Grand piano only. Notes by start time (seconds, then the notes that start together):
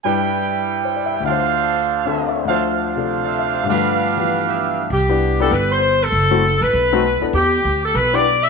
0.04 G2 G3 D4 E4 B4
0.85 C5
0.96 D5
1.06 E5
1.16 G5
1.20 D2 D3
1.26 F4 E5
1.31 C5
2.05 D3 C4 D4 A4 A5
2.18 F5
2.29 E5
2.38 D5
2.45 D2 D3 F3 E5
2.50 C5
2.96 C3 F4 A4 D5
3.24 D5
3.39 E5
3.54 F5
3.63 G2 D3
3.69 F3 A3
3.74 B4
4.17 E3 B3 G4 B4
5.09 B3 D4 E4 G4
5.40 B3 D4 E4 G4
6.31 A3 C4 E4 F#4
6.92 A3 C4 D#4 F#4
7.21 B3 D4 E4 A4
8.13 B3 D4 E4 G4